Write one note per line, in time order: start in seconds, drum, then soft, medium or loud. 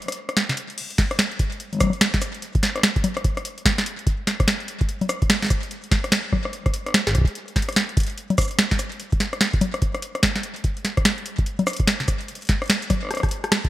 0.02 closed hi-hat soft
0.08 cross-stick medium
0.08 closed hi-hat medium
0.12 closed hi-hat loud
0.29 cross-stick medium
0.29 closed hi-hat soft
0.37 snare loud
0.37 closed hi-hat medium
0.49 snare medium
0.49 closed hi-hat soft
0.57 closed hi-hat medium
0.70 closed hi-hat soft
0.78 closed hi-hat medium
0.78 crash medium
0.90 closed hi-hat soft
0.98 kick loud
0.98 snare medium
0.98 closed hi-hat loud
1.11 cross-stick medium
1.11 closed hi-hat soft
1.19 snare loud
1.19 closed hi-hat medium
1.31 closed hi-hat soft
1.39 kick loud
1.39 closed hi-hat loud
1.52 closed hi-hat soft
1.60 closed hi-hat medium
1.73 closed hi-hat soft
1.73 low conga soft
1.75 low conga soft
1.77 low conga medium
1.79 cross-stick medium
1.79 closed hi-hat loud
1.79 low conga medium
1.80 kick loud
1.80 low conga medium
1.80 shaker medium
1.84 low conga medium
1.87 low conga medium
1.90 closed hi-hat soft
1.90 low conga medium
2.01 snare loud
2.01 closed hi-hat medium
2.14 kick loud
2.14 snare medium
2.14 closed hi-hat soft
2.22 cross-stick soft
2.22 closed hi-hat loud
2.22 shaker medium
2.34 closed hi-hat soft
2.42 closed hi-hat medium
2.55 kick loud
2.55 closed hi-hat soft
2.63 snare medium
2.63 closed hi-hat loud
2.76 cross-stick medium
2.76 closed hi-hat soft
2.77 cross-stick soft
2.79 cross-stick soft
2.81 cross-stick soft
2.81 snare loud
2.81 closed hi-hat medium
2.96 kick loud
2.96 closed hi-hat soft
3.04 closed hi-hat loud
3.04 low conga medium
3.17 cross-stick medium
3.17 closed hi-hat soft
3.24 kick loud
3.24 closed hi-hat medium
3.37 cross-stick medium
3.37 closed hi-hat soft
3.45 closed hi-hat loud
3.58 closed hi-hat soft
3.65 kick loud
3.65 snare loud
3.65 closed hi-hat medium
3.78 snare medium
3.78 closed hi-hat soft
3.86 closed hi-hat loud
3.99 closed hi-hat soft
4.07 kick loud
4.07 closed hi-hat medium
4.27 snare medium
4.27 closed hi-hat medium
4.40 kick loud
4.40 cross-stick medium
4.40 closed hi-hat soft
4.48 snare loud
4.48 closed hi-hat medium
4.60 closed hi-hat soft
4.68 closed hi-hat loud
4.81 kick loud
4.81 closed hi-hat soft
4.89 closed hi-hat medium
5.01 closed hi-hat soft
5.01 low conga medium
5.09 cross-stick medium
5.09 closed hi-hat loud
5.09 shaker medium
5.22 kick loud
5.22 closed hi-hat soft
5.30 snare loud
5.30 closed hi-hat medium
5.42 snare medium
5.42 closed hi-hat soft
5.44 snare medium
5.46 snare soft
5.48 kick loud
5.48 cross-stick soft
5.48 snare soft
5.48 closed hi-hat medium
5.48 shaker medium
5.63 closed hi-hat soft
5.71 closed hi-hat medium
5.84 closed hi-hat soft
5.91 kick loud
5.91 snare medium
5.91 closed hi-hat medium
6.04 cross-stick medium
6.04 closed hi-hat soft
6.12 snare loud
6.12 closed hi-hat medium
6.33 kick loud
6.33 cross-stick soft
6.33 low conga medium
6.45 cross-stick medium
6.53 closed hi-hat medium
6.66 kick loud
6.66 cross-stick medium
6.66 closed hi-hat soft
6.74 closed hi-hat loud
6.86 cross-stick soft
6.86 closed hi-hat soft
6.88 cross-stick soft
6.90 cross-stick soft
6.92 cross-stick soft
6.94 cross-stick soft
6.94 snare loud
6.94 closed hi-hat medium
6.97 cross-stick soft
7.01 cross-stick soft
7.04 kick medium
7.04 cross-stick soft
7.04 snare medium
7.09 kick medium
7.11 kick medium
7.13 kick medium
7.15 kick medium
7.15 cross-stick soft
7.15 closed hi-hat medium
7.18 kick loud
7.21 kick loud
7.24 kick loud
7.24 closed hi-hat soft
7.35 closed hi-hat medium
7.48 closed hi-hat soft
7.56 kick loud
7.56 snare medium
7.56 closed hi-hat medium
7.62 closed hi-hat medium
7.69 cross-stick medium
7.69 closed hi-hat medium
7.72 snare loud
7.72 closed hi-hat soft
7.76 closed hi-hat medium
7.89 closed hi-hat soft
7.97 kick loud
7.97 closed hi-hat medium
8.00 closed hi-hat medium
8.03 closed hi-hat medium
8.07 closed hi-hat soft
8.10 closed hi-hat soft
8.18 closed hi-hat medium
8.30 closed hi-hat soft
8.30 low conga medium
8.38 kick loud
8.38 cross-stick medium
8.38 closed hi-hat medium
8.38 shaker medium
8.41 shaker medium
8.44 shaker medium
8.48 closed hi-hat soft
8.48 shaker soft
8.59 snare loud
8.59 closed hi-hat medium
8.71 kick loud
8.71 snare medium
8.71 closed hi-hat soft
8.79 cross-stick soft
8.79 closed hi-hat medium
8.79 shaker medium
8.92 closed hi-hat soft
9.00 closed hi-hat medium
9.12 kick loud
9.12 closed hi-hat soft
9.20 snare medium
9.20 closed hi-hat medium
9.33 cross-stick medium
9.33 closed hi-hat soft
9.41 snare loud
9.41 closed hi-hat medium
9.53 kick loud
9.53 closed hi-hat soft
9.61 closed hi-hat medium
9.61 low conga loud
9.74 cross-stick medium
9.74 closed hi-hat soft
9.82 kick loud
9.82 closed hi-hat medium
9.95 cross-stick medium
9.95 closed hi-hat soft
10.02 closed hi-hat medium
10.15 cross-stick medium
10.15 closed hi-hat soft
10.23 kick loud
10.23 snare loud
10.23 closed hi-hat medium
10.36 snare medium
10.36 closed hi-hat soft
10.43 closed hi-hat medium
10.56 closed hi-hat soft
10.64 kick loud
10.64 closed hi-hat medium
10.77 closed hi-hat soft
10.85 snare medium
10.85 closed hi-hat medium
10.97 kick loud
10.97 cross-stick medium
10.97 closed hi-hat soft
11.05 snare loud
11.05 closed hi-hat medium
11.18 closed hi-hat soft
11.26 closed hi-hat medium
11.38 kick loud
11.38 closed hi-hat soft
11.46 closed hi-hat medium
11.59 closed hi-hat soft
11.59 low conga loud
11.67 cross-stick medium
11.67 closed hi-hat soft
11.67 shaker medium
11.70 closed hi-hat medium
11.73 closed hi-hat medium
11.76 kick loud
11.76 closed hi-hat medium
11.80 closed hi-hat soft
11.87 snare loud
11.87 closed hi-hat medium
12.00 snare medium
12.00 closed hi-hat soft
12.08 kick loud
12.08 cross-stick soft
12.08 closed hi-hat medium
12.08 shaker medium
12.21 closed hi-hat soft
12.28 closed hi-hat medium
12.35 closed hi-hat medium
12.41 closed hi-hat soft
12.43 closed hi-hat soft
12.45 closed hi-hat soft
12.47 snare medium
12.47 closed hi-hat soft
12.49 kick loud
12.49 closed hi-hat medium
12.62 cross-stick medium
12.62 closed hi-hat soft
12.64 closed hi-hat soft
12.66 closed hi-hat soft
12.68 snare loud
12.68 closed hi-hat soft
12.70 closed hi-hat medium
12.82 closed hi-hat soft
12.82 shaker medium
12.90 kick loud
12.90 cross-stick soft
12.90 closed hi-hat loud
12.90 low conga loud
13.03 cross-stick soft
13.05 cross-stick soft
13.07 cross-stick soft
13.09 cross-stick soft
13.11 cross-stick medium
13.11 closed hi-hat medium
13.14 cross-stick soft
13.14 closed hi-hat medium
13.17 cross-stick medium
13.17 closed hi-hat soft
13.20 cross-stick medium
13.23 kick loud
13.23 cross-stick medium
13.23 closed hi-hat soft
13.29 closed hi-hat soft
13.31 closed hi-hat medium
13.44 cross-stick medium
13.44 closed hi-hat soft
13.52 cross-stick medium
13.52 snare loud
13.52 closed hi-hat medium
13.64 kick loud
13.64 closed hi-hat soft